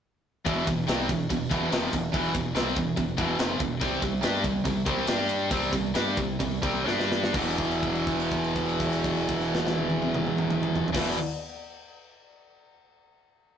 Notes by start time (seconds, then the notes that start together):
0.45 E1 E2 B2 E3, kick, ride
0.67 E1 E2 B2, kick, ride
0.87 C2 C3 G3 C4, snare, ride
1.08 E1 E2 B2, kick, ride
1.29 E1 E2 B2, kick, ride
1.49 E1 E2 B2 E3, kick, ride
1.71 F1 F2 C3 F3, snare, ride
1.92 E1 E2 B2, kick, ride
2.13 E1 E2 B2 E3, kick, ride
2.34 E1 E2 B2, kick, ride
2.55 C2 C3 G3 C4, snare, ride
2.76 E1 E2 B2, kick, ride
2.96 E1 E2 B2, kick, ride
3.17 E1 E2 B2 E3, kick, ride
3.38 F1 F2 C3 F3, snare, ride
3.59 E1 E2 B2, kick, ride
3.80 C2 C3 G3 C4, kick, ride
4.01 C2 C3 G3, kick, ride
4.22 G2 G3 D4 G4, snare, ride
4.44 C2 C3 G3, kick, ride
4.65 C2 C3 G3, kick, ride
4.85 C2 C3 G3 C4, kick, ride
5.07 G2 G3 D4 G4, snare, ride
5.29 ride
5.51 C2 C3 G3 C4, kick, ride
5.73 C2 C3 G3, kick, ride
5.94 G2 G3 D4 G4, snare, ride
6.17 C2 C3 G3, kick, ride
6.40 C2 C3 G3, kick, ride
6.62 C2 C3 G3 C4, kick, ride
6.85 G2 G3 D4 G4, snare
7.00 snare
7.12 snare
7.24 snare
7.32 E1 E2 B2, kick, crash
7.36 E3
7.58 kick, crash
7.71 crash
7.83 kick, crash
7.95 crash
8.07 kick, crash
8.20 crash
8.32 kick, crash
8.44 crash
8.56 kick, crash
8.69 crash
8.80 kick, crash
8.93 crash
9.04 kick, crash
9.17 crash
9.29 kick, crash
9.41 crash
9.55 snare
9.67 snare
9.78 high tom
9.90 high tom
10.02 high tom
10.14 mid tom
10.27 mid tom
10.38 mid tom
10.51 mid tom
10.63 mid tom
10.76 floor tom
10.88 floor tom
10.93 E1 E2 B2 E3, kick, snare, crash